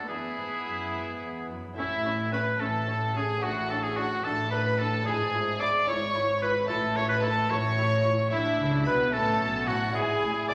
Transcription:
0.05 0.37 E2 medium
0.05 0.62 B3 soft
0.05 1.72 E4 soft
0.05 1.47 G#4 medium
0.05 1.73 B4 soft
0.09 0.35 E2 soft
0.09 1.55 B3 medium
0.09 1.58 E4 soft
0.09 1.58 B5 medium
0.37 0.45 G#2 soft
0.37 0.63 G#2 soft
0.65 0.93 F#2 soft
0.65 0.91 F#2 soft
0.93 1.22 G#2 soft
0.93 1.19 G#2 soft
1.21 1.49 E2 soft
1.21 1.47 E2 soft
1.50 1.78 F#2 soft
1.50 1.75 F#2 soft
1.73 3.36 C#4 soft
1.73 3.37 E4 soft
1.73 3.38 A4 medium
1.73 2.29 E5 medium
1.77 2.51 A1 medium
1.77 2.48 A2 medium
1.77 2.51 A2 medium
1.77 1.85 C#4 medium
1.77 2.29 E4 medium
2.05 2.13 C#4 medium
2.32 2.40 C#4 medium
2.32 2.62 B4 medium
2.32 2.60 B4 medium
2.32 2.41 B5 medium
2.60 3.33 A1 medium
2.60 3.30 A2 medium
2.60 3.33 A2 medium
2.60 2.69 C#4 medium
2.60 3.18 A4 medium
2.60 3.14 A4 medium
2.60 3.14 A5 medium
2.87 2.95 C#4 medium
3.15 3.23 C#4 medium
3.15 3.42 G#4 medium
3.15 3.45 G#4 medium
3.15 3.43 G#5 medium
3.38 5.00 B3 soft
3.38 5.01 F#4 medium
3.42 4.15 A1 medium
3.42 4.12 A2 medium
3.42 4.15 A2 medium
3.42 3.50 D4 medium
3.42 3.69 F#4 medium
3.42 3.70 F#4 medium
3.42 3.69 F#5 medium
3.69 3.77 D4 medium
3.69 3.84 A4 medium
3.69 3.83 A5 medium
3.83 3.98 G#4 medium
3.83 3.97 G#4 medium
3.83 3.97 G#5 medium
3.96 4.05 D4 medium
3.96 4.26 F#4 medium
3.96 4.24 F#4 medium
3.96 4.23 F#5 medium
4.23 4.96 A1 medium
4.23 4.94 A2 medium
4.23 4.97 A2 medium
4.23 4.33 D4 medium
4.23 4.51 A4 medium
4.23 4.51 A5 loud
4.51 4.60 D4 medium
4.51 4.80 B4 medium
4.51 4.79 B4 medium
4.51 4.79 B5 loud
4.78 4.87 D4 medium
4.78 5.05 A4 medium
4.78 5.06 A5 medium
5.02 6.63 B3 medium
5.02 6.63 D4 medium
5.02 6.64 E4 medium
5.02 5.62 G#4 medium
5.02 5.60 G#5 loud
5.06 5.78 G#1 medium
5.06 5.75 G#2 medium
5.06 5.78 G#2 medium
5.06 5.15 E4 medium
5.06 5.61 G#4 medium
5.34 5.42 E4 medium
5.60 5.68 E4 medium
5.60 5.88 D5 medium
5.60 5.68 D6 loud
5.87 6.59 G#1 medium
5.87 6.59 G#2 medium
5.87 6.57 G#2 medium
5.87 5.95 E4 medium
5.87 6.41 C#5 medium
5.87 6.42 C#5 medium
5.87 6.40 C#6 loud
6.14 6.22 E4 medium
6.41 6.49 E4 medium
6.41 6.54 B4 medium
6.41 6.69 B4 medium
6.41 6.69 B5 loud
6.64 8.26 A3 medium
6.64 8.26 C#4 medium
6.64 8.27 E4 medium
6.64 6.76 E4 medium
6.68 7.41 A1 medium
6.68 7.41 A2 medium
6.68 7.39 A2 medium
6.68 6.98 A4 medium
6.68 6.96 A4 medium
6.68 6.76 A5 loud
6.96 7.04 E4 medium
6.96 7.08 C#5 loud
6.96 7.10 C#5 medium
6.96 7.09 C#6 loud
7.09 7.15 B4 medium
7.09 7.24 B4 medium
7.09 7.23 B5 loud
7.22 7.30 E4 medium
7.22 7.52 A4 medium
7.22 7.51 A4 medium
7.22 7.50 A5 loud
7.49 8.22 A1 medium
7.49 8.22 A2 medium
7.49 8.20 A2 medium
7.49 7.57 E4 medium
7.49 8.04 C#5 loud
7.49 8.32 C#5 loud
7.49 8.32 C#6 loud
7.77 7.85 E4 medium
8.04 8.12 E4 medium
8.28 8.39 A1 medium
8.28 8.40 A2 medium
8.28 9.08 G#3 medium
8.28 9.09 D4 medium
8.28 9.10 E4 medium
8.28 8.84 E5 loud
8.32 8.56 A2 medium
8.32 8.82 E4 medium
8.32 8.86 E4 medium
8.58 8.85 C#2 medium
8.58 8.85 C#3 medium
8.58 8.84 C#3 medium
8.85 9.13 B1 medium
8.85 9.10 B2 medium
8.85 9.13 B2 medium
8.85 9.15 B4 medium
8.85 9.13 B4 medium
8.85 8.93 B5 loud
9.09 9.39 A1 medium
9.09 9.40 A2 medium
9.09 9.89 A3 medium
9.09 9.90 C#4 medium
9.09 9.92 C#4 medium
9.09 9.91 E4 medium
9.09 9.66 A4 medium
9.09 9.69 A4 medium
9.09 9.65 A5 loud
9.14 9.38 A2 medium
9.40 9.67 B1 medium
9.40 9.65 B2 medium
9.40 9.67 B2 medium
9.66 9.94 A1 medium
9.66 9.91 A2 medium
9.66 9.94 A2 medium
9.66 9.94 F#4 medium
9.66 9.76 F#4 medium
9.66 9.93 F#5 loud
9.90 10.02 G#1 medium
9.90 10.54 B3 medium
9.90 10.54 D4 medium
9.90 10.54 E4 medium
9.94 10.02 G#2 medium
9.94 10.18 G#2 medium
9.94 10.47 G#4 medium
9.94 10.48 G#4 medium
9.94 10.48 G#5 loud
10.20 10.28 A1 medium
10.20 10.29 A2 medium
10.48 10.54 B1 medium
10.48 10.54 B2 medium
10.48 10.54 D5 medium
10.48 10.54 D6 loud

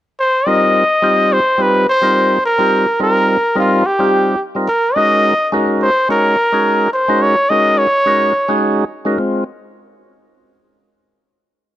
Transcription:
0.20 0.49 C5 medium
0.46 0.84 G3 medium
0.46 0.84 C4 medium
0.46 0.84 D#4 medium
0.46 0.84 F4 medium
0.46 0.85 A#4 medium
0.46 1.34 D#5 medium
1.02 1.40 G3 medium
1.02 1.40 C4 medium
1.02 1.40 D#4 medium
1.02 1.41 F4 medium
1.02 1.41 G4 medium
1.33 1.64 C5 medium
1.58 1.86 G3 medium
1.58 1.86 C4 medium
1.58 1.87 D#4 medium
1.58 1.87 F4 medium
1.58 1.87 G4 medium
1.62 1.89 B4 medium
1.89 2.41 C5 medium
2.01 2.38 G3 medium
2.01 2.38 C4 medium
2.01 2.39 D#4 medium
2.01 2.39 F4 medium
2.01 2.39 A#4 medium
2.46 2.97 A#4 medium
2.58 2.86 G3 medium
2.58 2.86 C4 medium
2.58 2.87 D#4 medium
2.58 2.87 F4 medium
2.58 2.87 G4 medium
2.99 3.37 G3 medium
2.99 3.38 C4 medium
2.99 3.38 D#4 medium
2.99 3.38 F4 medium
2.99 3.38 A#4 medium
2.99 3.54 A#4 medium
3.55 3.83 G3 medium
3.55 3.84 C4 medium
3.55 3.84 D#4 medium
3.55 3.84 F4 medium
3.55 3.88 F4 medium
3.55 3.84 A#4 medium
3.86 4.42 G4 medium
3.99 4.35 G3 medium
3.99 4.35 C4 medium
3.99 4.36 D#4 medium
3.99 4.36 F4 medium
3.99 4.36 G4 medium
4.55 4.68 G3 medium
4.55 4.69 C4 medium
4.55 4.69 D#4 medium
4.55 4.69 F4 medium
4.55 4.69 A#4 medium
4.68 4.97 A#4 medium
4.95 5.34 G#3 medium
4.95 5.34 C#4 medium
4.95 5.34 D#4 medium
4.95 5.34 F#4 medium
4.95 5.35 A#4 medium
4.95 5.52 D#5 loud
5.52 5.90 G#3 medium
5.52 5.90 C#4 medium
5.52 5.90 D#4 medium
5.52 5.91 F#4 medium
5.52 5.91 A#4 medium
5.82 6.08 C5 medium
6.08 6.36 G#3 medium
6.08 6.37 C#4 medium
6.08 6.37 D#4 medium
6.08 6.37 F#4 medium
6.08 6.90 A#4 medium
6.08 6.37 C#5 medium
6.52 6.88 G#3 medium
6.52 6.88 C#4 medium
6.52 6.88 D#4 medium
6.52 6.89 F#4 medium
6.52 6.89 G#4 medium
6.93 7.23 C5 medium
7.08 7.36 G#3 medium
7.08 7.36 C#4 medium
7.08 7.36 D#4 medium
7.08 7.36 F#4 medium
7.08 7.36 A#4 medium
7.22 7.51 C#5 medium
7.50 7.87 G#3 medium
7.50 7.87 C#4 medium
7.50 7.87 D#4 medium
7.50 7.88 F#4 medium
7.50 7.88 A#4 medium
7.50 7.80 D#5 medium
7.78 8.62 C#5 medium
8.06 8.33 G#3 medium
8.06 8.33 C#4 medium
8.06 8.33 D#4 medium
8.06 8.34 F#4 medium
8.06 8.34 A#4 medium
8.48 8.84 G#3 medium
8.48 8.85 C#4 medium
8.48 8.85 D#4 medium
8.48 8.85 F#4 medium
8.48 8.85 G#4 medium
9.05 9.17 G#3 medium
9.05 9.18 C#4 medium
9.05 9.18 D#4 medium
9.05 9.18 F#4 medium
9.05 9.19 A#4 medium
9.18 9.44 G#3 medium
9.18 9.44 C4 medium
9.18 9.44 F4 medium

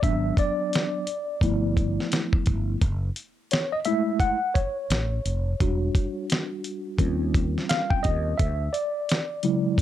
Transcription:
0.02 0.30 G#1 loud
0.02 1.03 F#3 soft
0.02 1.03 B3 soft
0.02 1.04 D4 medium
0.02 0.39 E5 medium
0.02 kick loud
0.02 closed hi-hat medium
0.37 2.09 D5 medium
0.37 kick loud
0.37 closed hi-hat medium
0.73 snare loud
0.73 closed hi-hat medium
1.07 closed hi-hat medium
1.41 1.97 G1 loud
1.41 2.78 F3 medium
1.41 2.78 A3 medium
1.41 2.78 B3 soft
1.41 2.78 E4 medium
1.41 kick medium
1.41 closed hi-hat medium
1.77 kick medium
1.77 closed hi-hat medium
2.00 snare soft
2.12 snare loud
2.12 closed hi-hat medium
2.33 kick medium
2.46 2.75 G1 medium
2.46 kick medium
2.46 closed hi-hat medium
2.81 3.09 F#1 loud
2.81 kick loud
2.81 closed hi-hat medium
3.16 closed hi-hat medium
3.51 3.71 C#5 medium
3.51 snare loud
3.51 closed hi-hat medium
3.72 3.79 D#5 medium
3.85 4.35 G#3 medium
3.85 4.36 A3 soft
3.85 4.36 E4 medium
3.85 4.18 E5 medium
3.85 closed hi-hat medium
4.20 4.57 F#5 loud
4.20 kick medium
4.20 closed hi-hat medium
4.54 6.26 C#5 medium
4.54 kick medium
4.54 closed hi-hat medium
4.90 5.18 A1 medium
4.90 snare loud
4.90 closed hi-hat loud
5.25 5.53 F1 medium
5.25 closed hi-hat medium
5.60 5.88 E1 medium
5.60 6.96 G3 medium
5.60 6.96 D4 soft
5.60 6.97 F#4 medium
5.60 kick loud
5.60 closed hi-hat medium
5.95 kick medium
5.95 closed hi-hat medium
6.30 snare loud
6.30 closed hi-hat medium
6.64 closed hi-hat medium
6.99 7.54 D#2 loud
6.99 8.35 G3 medium
6.99 8.36 C4 soft
6.99 8.36 C#4 medium
6.99 8.36 F4 medium
6.99 kick medium
6.99 closed hi-hat medium
7.34 kick medium
7.34 closed hi-hat medium
7.58 snare soft
7.69 7.92 F5 loud
7.69 snare loud
7.69 closed hi-hat loud
7.90 8.05 G5 loud
7.90 kick medium
8.03 8.32 D#2 medium
8.03 8.36 D#5 medium
8.03 kick medium
8.03 closed hi-hat medium
8.38 8.67 D2 loud
8.38 8.75 E5 medium
8.38 kick loud
8.38 closed hi-hat medium
8.73 9.82 D5 medium
8.73 closed hi-hat medium
9.09 snare loud
9.09 closed hi-hat medium
9.43 9.82 C#3 medium
9.43 9.82 F#3 medium
9.43 9.82 G#3 medium
9.43 9.82 E4 medium
9.43 closed hi-hat medium
9.78 kick medium
9.78 closed hi-hat medium

